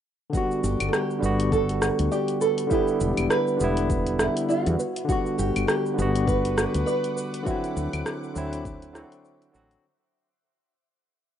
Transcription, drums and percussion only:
0.33 kick, cabasa
0.51 cabasa
0.64 cabasa
0.80 closed hi-hat, cabasa, claves
0.93 cross-stick, cabasa
1.11 cabasa
1.23 cabasa
1.40 closed hi-hat, cabasa
1.52 kick, cabasa
1.69 closed hi-hat, cabasa
1.82 cross-stick, cabasa
1.99 closed hi-hat, cabasa
2.12 cabasa
2.28 closed hi-hat, cabasa
2.41 cabasa
2.58 closed hi-hat, cabasa
2.71 kick, cabasa
2.88 cabasa
3.01 cabasa
3.17 closed hi-hat, cabasa, claves
3.30 cross-stick, cabasa
3.48 cabasa
3.60 cabasa
3.77 closed hi-hat, cabasa
3.90 kick, cabasa
4.07 closed hi-hat, cabasa
4.19 cross-stick, cabasa
4.37 closed hi-hat, cabasa
4.50 cabasa
4.66 closed hi-hat, cabasa
4.80 cabasa
4.96 closed hi-hat, cabasa
5.09 kick, cabasa
5.26 cabasa
5.39 cabasa
5.56 closed hi-hat, cabasa, claves
5.68 cross-stick, cabasa
5.86 cabasa
5.99 cabasa
6.16 closed hi-hat, cabasa
6.28 kick, cabasa
6.45 closed hi-hat, cabasa
6.58 cross-stick, cabasa
6.74 closed hi-hat, cabasa
6.88 cabasa
7.04 closed hi-hat, cabasa
7.17 cabasa
7.34 closed hi-hat, cabasa
7.46 kick, cabasa
7.64 closed hi-hat, cabasa
7.77 cabasa
7.93 closed hi-hat, cabasa, claves
8.06 cross-stick, cabasa
8.23 cabasa
8.36 cabasa
8.53 closed hi-hat, cabasa
8.65 kick, cabasa
8.82 closed hi-hat, cabasa
8.95 cross-stick, cabasa
9.12 closed hi-hat, cabasa
9.25 cabasa
9.42 closed hi-hat, cabasa
9.55 cabasa
9.71 closed hi-hat, cabasa

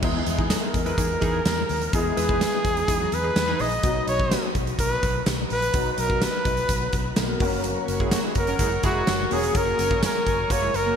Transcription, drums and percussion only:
0.03 kick, crash
0.26 closed hi-hat
0.39 kick
0.50 snare, closed hi-hat, tambourine
0.74 kick, closed hi-hat
0.86 closed hi-hat
0.98 kick, closed hi-hat
1.22 kick, closed hi-hat
1.45 snare, closed hi-hat, tambourine
1.69 open hi-hat
1.81 closed hi-hat
1.93 kick, closed hi-hat
2.17 closed hi-hat
2.29 kick
2.41 snare, closed hi-hat, tambourine
2.65 kick, closed hi-hat
2.77 closed hi-hat
2.88 kick, closed hi-hat
3.12 closed hi-hat
3.36 snare, closed hi-hat, tambourine
3.59 open hi-hat
3.72 closed hi-hat
3.83 kick, closed hi-hat
4.08 closed hi-hat
4.19 kick
4.31 snare, closed hi-hat, tambourine
4.55 kick, closed hi-hat
4.67 closed hi-hat
4.79 kick, closed hi-hat
5.03 kick, closed hi-hat
5.26 snare, closed hi-hat, tambourine
5.50 open hi-hat
5.62 closed hi-hat
5.74 kick, closed hi-hat
5.98 closed hi-hat
6.10 kick
6.22 snare, closed hi-hat, tambourine
6.45 kick, closed hi-hat
6.57 closed hi-hat
6.69 kick, closed hi-hat
6.93 kick, closed hi-hat
7.16 snare, closed hi-hat, tambourine
7.40 kick, open hi-hat
7.64 closed hi-hat
7.88 closed hi-hat
8.00 kick
8.11 snare, closed hi-hat, tambourine
8.35 kick, closed hi-hat
8.47 closed hi-hat
8.59 kick, closed hi-hat
8.83 kick, closed hi-hat
9.07 snare, closed hi-hat, tambourine
9.31 open hi-hat
9.43 closed hi-hat
9.55 kick, closed hi-hat
9.79 closed hi-hat
9.91 kick
10.03 snare, closed hi-hat, tambourine
10.27 kick, closed hi-hat
10.50 kick, closed hi-hat
10.74 closed hi-hat

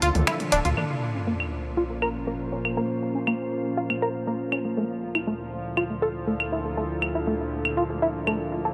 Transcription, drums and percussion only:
0.02 closed hi-hat
0.15 closed hi-hat, mid tom
0.27 finger snap, closed hi-hat, high tom, claves
0.40 closed hi-hat, high tom
0.52 closed hi-hat
0.65 closed hi-hat, mid tom
0.77 claves
1.40 claves
2.02 claves
2.65 claves
3.27 claves
3.90 claves
4.52 claves
5.15 claves
5.77 claves
6.40 claves
7.02 claves
7.65 claves
8.27 claves

